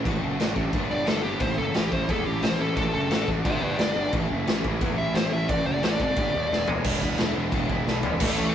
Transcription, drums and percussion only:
0.05 kick loud
0.05 crash medium
0.40 snare loud
0.40 crash medium
0.56 kick medium
0.73 kick loud
0.73 crash medium
1.07 snare loud
1.07 crash medium
1.40 kick loud
1.40 crash medium
1.74 snare loud
1.74 crash medium
1.92 kick medium
2.09 kick loud
2.09 crash medium
2.43 snare loud
2.43 crash medium
2.77 kick loud
2.77 crash medium
3.11 snare loud
3.11 crash medium
3.28 kick medium
3.45 kick loud
3.45 crash medium
3.79 snare loud
3.79 crash medium
4.13 kick loud
4.13 crash medium
4.47 snare loud
4.47 crash medium
4.65 kick medium
4.81 kick loud
4.81 crash medium
5.15 snare loud
5.15 crash medium
5.49 kick loud
5.49 crash medium
5.83 snare loud
5.83 crash medium
6.00 kick medium
6.16 kick loud
6.16 crash medium
6.53 snare medium
6.67 floor tom loud
6.84 kick loud
6.84 crash loud
6.84 crash medium
7.02 kick medium
7.18 snare loud
7.18 crash medium
7.52 kick loud
7.52 crash medium
7.69 kick medium
7.87 snare medium
8.03 floor tom medium
8.20 kick loud
8.20 crash loud
8.20 crash medium
8.37 crash medium

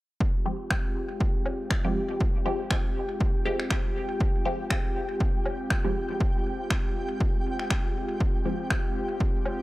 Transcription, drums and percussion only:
0.20 kick loud
0.70 finger snap medium
0.70 kick medium
1.20 kick loud
1.46 low woodblock medium
1.70 finger snap medium
1.70 kick medium
2.21 kick loud
2.71 finger snap medium
2.71 kick medium
3.21 kick loud
3.60 finger snap soft
3.70 finger snap medium
3.70 kick medium
4.20 kick loud
4.70 finger snap medium
4.70 kick medium
5.20 kick loud
5.46 low woodblock medium
5.70 finger snap medium
5.70 kick medium
6.20 kick loud
6.70 finger snap medium
6.70 kick medium
7.20 kick loud
7.59 finger snap soft
7.70 finger snap medium
7.70 kick medium
8.20 kick loud
8.70 finger snap medium
8.70 kick medium
9.20 kick loud
9.45 low woodblock medium

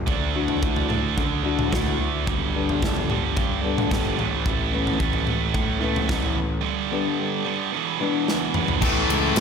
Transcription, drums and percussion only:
0.07 kick loud
0.07 floor tom medium
0.48 floor tom medium
0.63 kick loud
0.76 floor tom medium
0.90 mid tom medium
1.18 kick medium
1.18 floor tom medium
1.59 floor tom medium
1.59 mid tom medium
1.73 kick medium
1.73 snare medium
1.73 mid tom medium
1.86 floor tom medium
2.27 kick loud
2.27 floor tom medium
2.69 floor tom medium
2.82 kick loud
2.82 snare medium
2.96 floor tom medium
3.10 mid tom medium
3.37 kick loud
3.37 floor tom medium
3.78 floor tom medium
3.78 mid tom medium
3.91 kick loud
3.91 snare medium
3.91 mid tom medium
4.05 floor tom medium
4.19 mid tom medium
4.46 kick loud
4.46 floor tom medium
4.87 floor tom medium
5.00 kick loud
5.13 floor tom medium
5.27 mid tom medium
5.54 kick loud
5.54 floor tom medium
5.96 floor tom medium
5.96 mid tom medium
6.09 kick loud
6.09 snare medium
6.09 mid tom medium
6.23 floor tom medium
8.28 snare medium
8.54 mid tom medium
8.68 floor tom medium
8.82 kick loud
8.82 crash loud
9.10 ride medium
9.36 ride loud

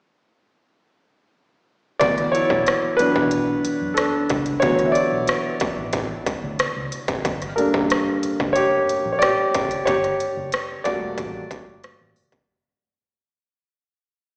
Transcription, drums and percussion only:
2.01 kick medium
2.01 closed hi-hat medium
2.18 cross-stick soft
2.18 closed hi-hat soft
2.35 closed hi-hat medium
2.50 kick medium
2.67 cross-stick loud
2.67 closed hi-hat medium
2.99 closed hi-hat medium
3.16 kick medium
3.31 closed hi-hat medium
3.65 closed hi-hat medium
3.97 cross-stick medium
3.97 closed hi-hat medium
4.30 kick medium
4.30 closed hi-hat medium
4.46 closed hi-hat soft
4.62 kick medium
4.62 closed hi-hat medium
4.79 cross-stick soft
4.79 closed hi-hat soft
4.95 closed hi-hat medium
5.27 cross-stick loud
5.27 closed hi-hat medium
5.60 kick medium
5.60 closed hi-hat medium
5.93 kick medium
5.93 closed hi-hat medium
6.26 kick medium
6.26 closed hi-hat medium
6.59 cross-stick loud
6.59 closed hi-hat medium
6.92 closed hi-hat medium
7.08 kick medium
7.08 closed hi-hat soft
7.25 kick medium
7.25 closed hi-hat medium
7.42 cross-stick soft
7.42 closed hi-hat soft
7.58 closed hi-hat medium
7.74 kick medium
7.90 cross-stick loud
7.90 closed hi-hat medium
8.23 closed hi-hat medium
8.40 kick medium
8.56 closed hi-hat medium
8.89 closed hi-hat medium
9.22 cross-stick loud
9.22 closed hi-hat medium
9.54 kick medium
9.54 closed hi-hat medium
9.71 closed hi-hat soft
9.87 kick medium
9.87 closed hi-hat medium
10.04 cross-stick soft
10.04 closed hi-hat soft
10.20 closed hi-hat medium
10.52 cross-stick loud
10.52 closed hi-hat medium
10.85 kick medium
10.85 closed hi-hat medium
11.18 kick medium
11.18 closed hi-hat medium
11.51 kick medium
11.51 closed hi-hat medium
11.84 cross-stick loud
11.84 closed hi-hat medium
12.16 open hi-hat soft
12.32 kick medium
12.32 closed hi-hat medium

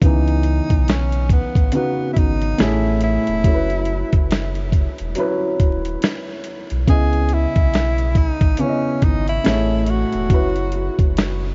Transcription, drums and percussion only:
0.02 kick loud
0.02 closed hi-hat medium
0.28 closed hi-hat soft
0.43 closed hi-hat medium
0.70 kick medium
0.70 closed hi-hat medium
0.88 snare loud
0.88 closed hi-hat medium
1.12 closed hi-hat soft
1.29 kick medium
1.29 closed hi-hat medium
1.55 kick medium
1.55 closed hi-hat medium
1.72 closed hi-hat medium
2.16 kick medium
2.16 closed hi-hat medium
2.42 closed hi-hat soft
2.58 snare loud
2.58 closed hi-hat medium
3.01 closed hi-hat medium
3.27 closed hi-hat soft
3.44 kick loud
3.44 closed hi-hat medium
3.70 closed hi-hat soft
3.85 closed hi-hat medium
4.13 kick medium
4.13 closed hi-hat soft
4.31 snare loud
4.31 closed hi-hat medium
4.55 closed hi-hat soft
4.72 kick medium
4.72 closed hi-hat medium
4.98 closed hi-hat soft
5.15 closed hi-hat medium
5.60 kick medium
5.60 closed hi-hat medium
5.85 closed hi-hat soft
6.02 snare loud
6.02 closed hi-hat medium
6.44 closed hi-hat medium
6.70 closed hi-hat soft
6.87 kick loud
6.87 closed hi-hat medium
7.13 closed hi-hat soft
7.29 closed hi-hat medium
7.56 kick medium
7.56 closed hi-hat soft
7.74 snare medium
7.74 closed hi-hat medium
7.98 closed hi-hat soft
8.15 kick medium
8.15 closed hi-hat medium
8.41 kick loud
8.41 closed hi-hat soft
8.57 closed hi-hat medium
9.02 kick medium
9.02 closed hi-hat medium
9.28 closed hi-hat soft
9.45 snare loud
9.45 closed hi-hat medium
9.86 closed hi-hat medium
10.12 closed hi-hat soft
10.30 kick loud
10.30 closed hi-hat medium
10.56 closed hi-hat soft
10.72 closed hi-hat medium
10.99 kick medium
10.99 closed hi-hat soft
11.17 snare loud
11.17 closed hi-hat medium

